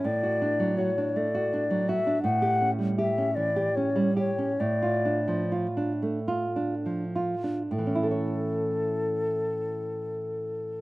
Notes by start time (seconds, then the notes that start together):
0.04 A2 D5
0.23 F#4
0.42 D4
0.60 F#3
0.77 F#4 C#5
0.98 D4
1.16 A3 D5
1.35 F#4
1.53 D4
1.70 F#3
1.89 F#4 E5
2.07 D4
2.23 A2 F#5
2.42 G4
2.61 C#4
2.79 G3
2.98 G4 E5
3.18 C#4
3.35 E3 D5
3.56 G4
3.76 C#4 C#5
3.96 G3
4.17 G4 C#5
4.38 C#4
4.60 A2 D5
4.82 F4
5.05 D4
5.28 F3
5.52 F4
5.77 D4
6.02 A3
6.28 F4
6.56 D4
6.86 F3
7.16 F4
7.44 D4
7.70 A2 A4
7.78 E3
7.87 C#4
7.95 E4
8.03 A4
8.11 C#5